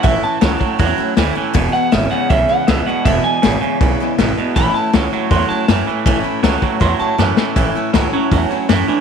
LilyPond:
<<
  \new Staff \with { instrumentName = "Clean electric guitar" } { \time 4/4 \key a \major \tempo 4 = 160 e''8 a''2. r8 | r8 fis''8 e''8 fis''8 e''8 fis''8 e''8 fis''8 | e''8 gis''2. r8 | b''8 a''8 r4 c'''8 a''4 r8 |
r2 c'''8 a''4 r8 | r4. cis'8 cis'8 cis'4 d'8 | }
  \new Staff \with { instrumentName = "Steel-string acoustic guitar" } { \time 4/4 \key a \major <a, e a cis' e'>8 <a cis' e'>8 <a, e a cis' e'>8 <a cis' e'>8 <e a cis' e'>8 <a cis' e'>8 <a, e a cis' e'>8 <a cis' e'>8 | <e, b, e gis b e'>8 <e gis b e'>8 <e, b, e gis b e'>8 <e gis b e'>8 <e gis b e'>8 <e gis b e'>8 <e, b, e gis b e'>8 <e gis b e'>8 | <e, b, e gis b e'>8 <e gis b e'>8 <e, b, e gis b e'>8 <e gis b e'>8 <e gis b e'>8 <e gis b e'>8 <e, b, e gis b e'>8 <e gis b e'>8 | <a, e a cis' e'>8 <a cis' e'>8 <a, e a cis' e'>8 <a cis' e'>8 <e a cis' e'>8 <a cis' e'>8 <a, e a cis' e'>8 <a cis' e'>8 |
<a, e a cis' e'>8 <a cis' e'>8 <a, e a cis' e'>8 <a cis' e'>8 <e a cis' e'>8 <a cis' e'>8 <a, e a cis' e'>8 <a cis' e'>8 | <a, e a cis' e'>8 <a cis' e'>8 <a, e a cis' e'>8 <a cis' e'>8 <e a cis' e'>8 <a cis' e'>8 <a, e a cis' e'>8 <a cis' e'>8 | }
  \new Staff \with { instrumentName = "Clean electric guitar" } { \clef bass \time 4/4 \key a \major <a, e>4 <a, fis>8 <a, fis>8 <a, fis>4 <a, e>8 <a, e>8 | <e, b,>4 <e, cis>8 <e, cis>8 <e, cis>4 <e, b,>8 <e, b,>8 | <e, b,>4 <e, cis>8 <e, cis>8 <e, cis>4 <e, b,>8 <e, b,>8 | <a, e>4 <a, fis>8 <a, fis>8 <a, fis>4 <a, e>8 <a, e>8 |
<a, e>4 <a, fis>8 <a, fis>8 <a, fis>4 <a, e>8 <a, e>8 | <a, e>4 <a, fis>8 <a, fis>8 <a, fis>4 <a, e>8 <a, e>8 | }
  \new Staff \with { instrumentName = "Upright bass" } { \clef bass \time 4/4 \key a \major a,,8 r8 cis,8 r8 e,8 r8 d,8 r8 | e,,8 r8 gis,,8 r8 b,,8 r8 cis,8 r8 | e,,8 r8 gis,,8 r8 b,,8 r8 gis,,8 r8 | a,,8 r8 cis,8 r8 e,8 r8 fis,8 r8 |
a,,8 r8 cis,8 r8 e,8 r8 fis,8 r8 | a,,8 r8 cis,8 r8 e,8 r8 fis,8 r8 | }
  \new DrumStaff \with { instrumentName = "Drums" } \drummode { \time 4/4 <hho bd>4 <hho sn>8 bd8 <hho bd>4 <hho sn>4 | <hho bd>4 <hho sn>4 <hho bd>4 <hho sn>4 | <hho bd>4 <hho sn>4 <hho bd>4 <hho sn>4 | <hho bd>4 <hho sn>4 <hho bd>4 <hho sn>4 |
<hho bd>4 <hho sn>8 bd8 <hho bd>4 sn8 sn8 | <hho bd>4 <hho sn>4 <hho bd>4 <hho sn>4 | }
>>